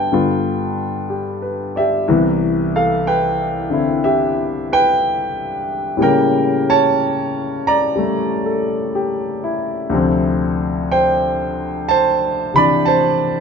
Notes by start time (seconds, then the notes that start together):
Already playing: G2 D3 B3 E4 B4 E5 G5 A5
0.12 G2 D3 B3 F4
1.10 G4
1.42 B4
1.76 G4 D5 E5
2.08 C2 C3 E3 B3
2.76 A4 F5
3.07 B4 G5
3.70 D3 C4 E4
4.04 G4 E5
4.73 B4 G5
5.97 A2 G3 A#3
6.02 C#3 A#4 G5
6.70 C#5 A5
7.67 D5 A#5
7.96 G3 A3
8.46 A4
8.95 G4
9.44 E4
9.89 D2 C3 F3
9.94 C4
10.92 C5 G5
11.89 C5 A5
12.54 C3 E3 D4 B5
12.58 D5
12.85 C5 A5